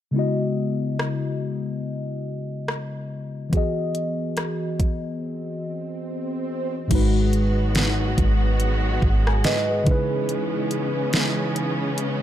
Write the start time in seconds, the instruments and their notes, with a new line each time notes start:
0.11 tine electric piano C#3 G#3 B3
0.16 tine electric piano E4 F#4 D#5
0.99 cross-stick
2.68 cross-stick
3.49 tine electric piano E3 B3 F#4, kick, closed hi-hat
3.55 tine electric piano G#4 D#5
3.95 closed hi-hat
4.37 cross-stick, closed hi-hat
4.80 kick, closed hi-hat
6.87 808-style bass G#1, tine electric piano G#2 G#3 D#4, string section D#3 F#3 G#3 B3 F#4, kick, closed hi-hat, crash
6.93 tine electric piano F#4 B4
7.33 closed hi-hat
7.75 snare, closed hi-hat
8.18 808-style bass G#1, kick, closed hi-hat
8.60 closed hi-hat
9.02 808-style bass G#1, kick
9.27 tine electric piano G#5, cross-stick
9.44 tine electric piano B4 D#5, snare, closed hi-hat
9.70 tine electric piano G#4 B4
9.83 tine electric piano C#3 G#3 D#4, 808-style bass C#3, string section C#3 E3 B3 C#4, kick, closed hi-hat
9.89 tine electric piano E4 B4
10.29 closed hi-hat
10.71 closed hi-hat
11.13 snare, closed hi-hat
11.56 closed hi-hat
11.98 closed hi-hat